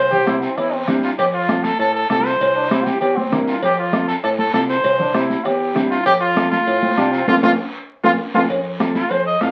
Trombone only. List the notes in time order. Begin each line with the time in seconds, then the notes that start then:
0.11 G4
0.27 E4
0.39 B3
0.43 C4
0.59 E4
0.73 C4
2.55 D4
2.70 E4
2.85 G4
3.01 G4
3.16 C4
4.99 D4
5.15 E4
5.45 G4
6.82 C4
6.97 D4
7.13 C4
7.29 F4
7.43 F4
8.04 F4
8.35 F4